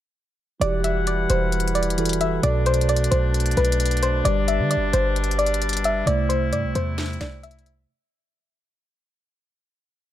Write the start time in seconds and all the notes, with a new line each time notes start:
0.60 E1 E3 G3 E4 F#4 D5 F#5, closed hi-hat
0.64 G4
0.84 E5, closed hi-hat
1.07 D5, closed hi-hat
1.30 E1 C5, closed hi-hat
1.52 closed hi-hat
1.60 closed hi-hat
1.68 closed hi-hat
1.75 D5, closed hi-hat
1.83 closed hi-hat
1.90 closed hi-hat
1.97 E3 E4 F#4 A4, closed hi-hat
2.05 closed hi-hat
2.09 closed hi-hat
2.13 closed hi-hat
2.21 E5, closed hi-hat
2.42 B1 B2 A3 D4 F#4 A4 D5, closed hi-hat
2.66 C5, closed hi-hat
2.74 closed hi-hat
2.81 closed hi-hat
2.89 D5, closed hi-hat
2.96 closed hi-hat
3.04 closed hi-hat
3.11 B1 C5, closed hi-hat
3.34 closed hi-hat
3.40 closed hi-hat
3.46 closed hi-hat
3.51 closed hi-hat
3.57 B1 B4, closed hi-hat
3.65 closed hi-hat
3.72 closed hi-hat
3.80 closed hi-hat
3.85 closed hi-hat
3.91 closed hi-hat
3.97 closed hi-hat
4.03 C5, closed hi-hat
4.24 G1 G3 G4 D5, closed hi-hat
4.48 E5, closed hi-hat
4.59 D3
4.71 D5, closed hi-hat
4.76 G1
4.93 G1 C5, closed hi-hat
5.16 closed hi-hat
5.24 closed hi-hat
5.31 closed hi-hat
5.39 D5, closed hi-hat
5.46 closed hi-hat
5.54 closed hi-hat
5.62 closed hi-hat
5.69 closed hi-hat
5.73 closed hi-hat
5.77 closed hi-hat
5.84 E5, closed hi-hat
6.05 C2 C3 A3 E4 C5 D5, closed hi-hat
6.29 C5, closed hi-hat
6.53 G2 D5, closed hi-hat
6.64 C2
6.75 E2 C5, closed hi-hat
6.98 snare, closed hi-hat
7.06 closed hi-hat
7.13 closed hi-hat
7.21 C2 D5, snare, closed hi-hat
7.43 E5, closed hi-hat
7.51 closed hi-hat
7.59 closed hi-hat
7.66 closed hi-hat